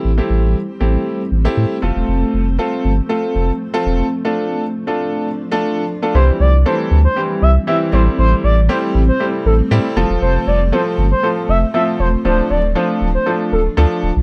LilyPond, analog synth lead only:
\new Staff \with { instrumentName = "Analog synth lead" } { \time 4/4 \key f \lydian \tempo 4 = 118 r1 | r1 | r1 | c''8 d''8 c''16 r8 c''8 r16 e''16 r16 e''16 r16 c''16 r16 |
c''8 d''8 c''16 r8 c''8 r16 a'16 r4 r16 | c''8 d''8 c''16 r8 c''8 r16 e''16 r16 e''16 r16 c''16 r16 | c''8 d''8 c''16 r8 c''8 r16 a'16 r4 r16 | }